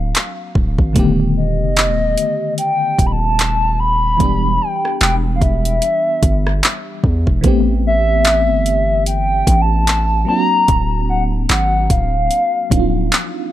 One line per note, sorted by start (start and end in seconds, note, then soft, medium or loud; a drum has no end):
0.00 0.13 D1 loud
0.00 0.49 F#3 medium
0.00 0.50 A#3 medium
0.00 0.51 C4 medium
0.00 0.52 D4 medium
0.00 0.56 F#4 medium
0.00 0.52 F5 loud
0.15 clap loud
0.15 closed hi-hat medium
0.55 0.78 D1 loud
0.55 kick loud
0.78 0.95 G#1 loud
0.78 kick loud
0.93 1.62 D#1 loud
0.93 0.96 D3 medium
0.93 4.15 A3 medium
0.93 4.16 B3 medium
0.93 kick loud
0.93 closed hi-hat medium
0.97 4.17 D3 medium
0.97 4.18 D#3 medium
0.97 4.18 G4 medium
1.37 2.54 D#5 loud
1.60 1.91 F1 medium
1.77 clap loud
1.77 closed hi-hat medium
1.89 2.16 D#1 loud
2.17 closed hi-hat medium
2.58 3.08 G5 loud
2.58 closed hi-hat medium
2.99 4.16 D#1 loud
2.99 kick loud
2.99 closed hi-hat medium
3.06 3.14 B5 medium
3.12 3.81 A5 loud
3.39 clap loud
3.39 closed hi-hat medium
3.80 4.63 B5 loud
4.17 4.59 E1 loud
4.17 7.39 E3 medium
4.17 7.39 G3 medium
4.17 7.40 B3 medium
4.17 kick loud
4.17 closed hi-hat medium
4.22 7.41 D4 medium
4.22 7.42 G4 medium
4.61 5.01 G5 loud
4.85 cross-stick medium
5.01 5.40 E1 loud
5.01 5.16 G5 loud
5.01 clap loud
5.01 closed hi-hat medium
5.36 5.44 F5 medium
5.41 5.80 E1 loud
5.41 7.04 E5 loud
5.41 kick loud
5.41 closed hi-hat soft
5.65 closed hi-hat medium
5.82 closed hi-hat medium
6.23 6.61 G1 loud
6.23 kick loud
6.23 closed hi-hat medium
6.47 cross-stick medium
6.63 clap loud
6.63 closed hi-hat medium
7.04 7.26 E2 loud
7.04 kick loud
7.27 7.43 E1 loud
7.27 kick loud
7.41 8.51 A1 loud
7.41 10.22 E3 medium
7.41 10.23 A3 medium
7.41 10.24 B3 medium
7.41 kick loud
7.41 closed hi-hat medium
7.46 10.25 C4 medium
7.46 10.26 G4 medium
7.87 9.03 E5 loud
8.25 clap loud
8.25 closed hi-hat medium
8.49 9.43 G1 loud
8.66 closed hi-hat medium
9.06 9.63 G5 loud
9.06 closed hi-hat medium
9.47 10.25 A1 loud
9.47 kick loud
9.47 closed hi-hat medium
9.62 10.28 A5 loud
9.87 clap loud
9.87 closed hi-hat medium
10.25 12.66 F#3 medium
10.25 12.66 A#3 medium
10.25 12.67 C4 medium
10.25 11.05 A#5 loud
10.30 12.68 D4 medium
10.30 10.37 F4 medium
10.38 12.72 F#4 medium
10.68 11.46 D1 loud
10.68 kick loud
10.68 closed hi-hat medium
11.09 11.23 F#5 medium
11.49 11.89 G#1 loud
11.49 11.92 F#5 loud
11.49 clap loud
11.49 closed hi-hat medium
11.90 12.29 D1 loud
11.90 13.52 F5 loud
11.90 kick medium
11.90 closed hi-hat medium
12.31 closed hi-hat medium
12.70 13.10 D1 loud
12.70 13.52 F3 medium
12.70 13.52 A#3 soft
12.70 13.52 C4 medium
12.70 13.52 D4 soft
12.70 12.80 D#4 soft
12.70 kick loud
12.70 closed hi-hat medium
12.80 13.52 F4 medium
13.12 clap loud
13.12 closed hi-hat medium